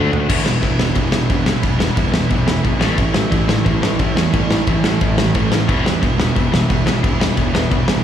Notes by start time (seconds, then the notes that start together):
Already playing: D3 A3 D4 F#4
0.12 D2, floor tom
0.29 E1 E2 B2 E3 G3 B3 E4, kick, crash
0.45 E1 E2 B2, snare
0.63 E1 E2 B2 E3 G3 B3 E4, kick, crash
0.79 E1 E2 B2 E3 G3 B3 E4, snare
0.95 E1 E2 B2 E3 G3 B3 E4, kick, crash
1.12 E1 E2 B2, snare
1.30 E1 E2 B2 E3 G3 B3 E4, kick, crash
1.46 B1 E2 B2 E3 G3 B3 E4, snare
1.62 E1 E2 B2 E3 G3 B3 E4, kick, crash
1.79 E2 B2, snare
1.95 E1 E2 B2 E3 G3 B3 E4, kick, crash
2.12 E2 B2 E3 G3 B3 E4, snare
2.29 E1 E2 B2 E3 G3 B3 E4, kick, crash
2.46 E1 E2 B2, snare
2.63 B1 E2 B2 E3 G3 B3 E4, kick, crash
2.79 A1 A2 E3 A3 C#4 E4, snare
2.97 A1 A2 E3 A3 C#4 E4, kick, crash
3.13 A1 A2 E3, snare
3.31 A1 A2 E3 A3 C#4 E4, kick, crash
3.47 A1 A2 E3 A3 C#4 E4, snare
3.65 A1 A2 E3 A3 C#4 E4, kick, crash
3.82 A1 A2 E3, snare
3.99 A1 A2 E3 A3 C#4 E4, kick, crash
4.15 E2 A2 E3 A3 C#4 E4, snare
4.33 A1 A2 E3 A3 C#4 E4, kick, crash
4.51 A2 E3, snare
4.67 A1 A2 E3 A3 C#4 E4, kick, crash
4.83 A2 E3 A3 C#4 E4, snare
5.00 A1 A2 E3 A3 C#4 E4, kick, crash
5.18 A1 A2 E3, snare
5.34 A1 A2 E3 A3 C#4 E4, kick, crash
5.51 A1 A2 E3 A3 C#4 E4, snare
5.67 E1 E2 B2 E3 G3 B3 E4, kick, crash
5.85 E1 E2 B2, snare
6.02 E1 E2 B2 E3 G3 B3 E4, kick, crash
6.18 E1 E2 B2 E3 G3 B3 E4, snare
6.35 E1 E2 B2 E3 G3 B3 E4, kick, crash
6.52 E1 E2 B2, snare
6.69 E1 E2 B2 E3 G3 B3 E4, kick, crash
6.86 B1 E2 B2 E3 G3 B3 E4, snare
7.02 E1 E2 B2 E3 G3 B3 E4, kick, crash
7.20 E2 B2, snare
7.35 E1 E2 B2 E3 G3 B3 E4, kick, crash
7.53 E2 B2 E3 G3 B3 E4, snare
7.70 E1 E2 B2 E3 G3 B3 E4, kick, crash
7.88 E1 E2 B2, snare